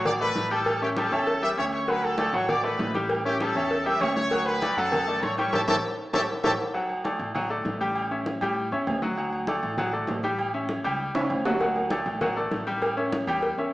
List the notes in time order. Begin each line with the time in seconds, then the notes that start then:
Already playing: A1 F#3 F#4 F#5
0.05 D5 D6, cowbell, high conga, low conga, low agogo
0.20 A3 A4 B4 D5 B5, high conga
0.35 A1, cowbell, high conga, low agogo
0.51 G3 G4 A4 G5 A5, cowbell
0.66 cowbell, high conga, low agogo
0.82 C#4 G4 C#5 E5 G5, high conga
0.97 G3 G4 A4 G5 A5, cowbell, high conga, low agogo
1.12 E2 C#4 C#5 E5, high conga, low agogo
1.27 cowbell, high conga
1.42 G3 G4 E5 G5 E6, high conga
1.57 D2 C#4 C#5 E5 C#6, cowbell, high conga, low agogo
1.73 C#5 C#6, cowbell
1.88 F#3 F#4 B4 F#5 B5, cowbell, high conga, low agogo
2.03 A4 A5, high conga, low agogo
2.18 A3 A4 D5, cowbell, high conga, low agogo
2.33 A1 F#3 F#4 C#5 F#5 C#6, high conga, low agogo
2.49 D5 D6, cowbell, high conga, low conga, low agogo
2.64 A3 A4 B4 D5 B5, high conga
2.79 A1, cowbell, high conga, low timbale, low agogo
2.94 G3 G4 G5, cowbell, high conga
3.09 cowbell, high conga, low agogo
3.25 C#4 G4 C#5 E5 G5, high conga
3.40 G3 G4 A4 G5 A5, cowbell, high conga, low agogo
3.55 E2 C#4 C#5 E5, high conga, low agogo
3.71 cowbell, high conga
3.86 G3 G4 E5 G5 E6, high conga
4.01 D2 C#4 C#5 E5 C#6, cowbell, high conga, low timbale, low agogo
4.16 C#5 C#6, cowbell, high conga
4.31 F#3 F#4 F#5, cowbell, high conga, low agogo
4.46 B4 B5, high conga, low agogo
4.62 A3 A4 D5, cowbell, high conga, low agogo
4.76 F#2 F#3 F#4 A4 F#5 A5, high conga, low agogo
4.92 cowbell, high conga, low conga, low agogo
5.08 A3 A4 D5, high conga
5.21 A1 C#5 C#6, cowbell, high conga, low agogo
5.37 G3 G4 C#5 G5 C#6, cowbell, high conga
5.53 A1 G4 A4 C#5 E5 G5 A5, cowbell, high conga, high timbale
5.68 A1 G4 A4 C#5 E5 G5 A5, cowbell, high conga, high timbale
6.13 A1 G4 A4 C#5 E5 G5 A5, cowbell, high conga, high timbale
6.44 A1 G4 A4 C#5 E5 G5 A5, cowbell, high conga, high timbale
6.74 F#3 F#4 F#5, high conga, low agogo
6.89 high conga, low agogo
7.04 A3 A4 D5, high conga, low agogo
7.19 A1, high conga, low agogo
7.35 F#3 F#4 F#5, high conga, low conga, low agogo
7.50 A3 A4 D5, high conga
7.65 A1, high conga, low agogo
7.81 G3 G4 G5
7.95 high conga, low agogo
8.11 C#4 C#5 E5, high conga
8.26 high conga, low agogo
8.41 A2 G3 G4 G5, high conga, low agogo
8.57 high conga
8.71 E2 C#4 C#5 E5, high conga
8.87 D2, high conga, low timbale, low agogo
9.02 F#3 F#4 F#5, high conga
9.17 F#3 F#4 F#5, high conga, low agogo
9.32 high conga, low agogo
9.47 A3 A4 D5, high conga, low agogo
9.63 A1, high conga, low agogo
9.78 F#3 F#4 F#5, high conga, low conga, low agogo
9.93 A3 A4 D5, high conga
10.07 A1, high conga, low timbale, low agogo
10.23 G3 G4 G5, high conga
10.38 high conga, low agogo
10.54 C#4 C#5 E5, high conga
10.69 high conga, low agogo
10.84 C#2 G3 G4 G5, high conga, low agogo
10.99 high conga
11.14 C#2 C#4 C#5 E5, high conga, high timbale
11.29 D2, high conga, low agogo
11.45 F#3 F#4 F#5, low timbale
11.60 F#3 F#4 F#5, cowbell, high conga, low agogo
11.76 high conga, low agogo
11.90 A3 A4 D5, cowbell, high conga, low agogo
12.06 A1, high conga, low agogo
12.21 F#3 F#4 F#5, cowbell, high conga, low conga, low agogo
12.36 A3 A4 D5, high conga
12.51 A1, cowbell, high conga, low agogo
12.67 G3 G4 G5, cowbell
12.82 cowbell, high conga, low agogo
12.97 C#4 C#5 E5, high conga
13.12 cowbell, high conga, low agogo
13.27 E2 G3 G4 G5, high conga, low agogo
13.43 cowbell, high conga
13.58 E2 C#4 C#5 E5, high conga